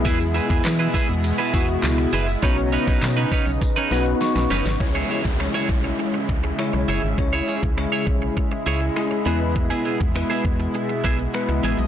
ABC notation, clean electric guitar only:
X:1
M:4/4
L:1/16
Q:1/4=101
K:C#m
V:1 name="Clean electric guitar"
[EGB] z [EGB] [EGB] z [EGB] [EGB] z2 [EGB] [EGB] z3 [EGB] z | [CDB] z [CDB] [CDB] z [CDB] [CDB] z2 [CDB] [CDB] z3 [CDB] z | z [EGc] [EGc] z2 [EGc] z8 [EGc] z | z [EGc] [EGc] z2 [EGc] z4 [EGc] z3 [B,EG] z |
z [B,EG] [B,EG] z2 [B,EG] z4 [B,EG] z3 [B,EG] z |]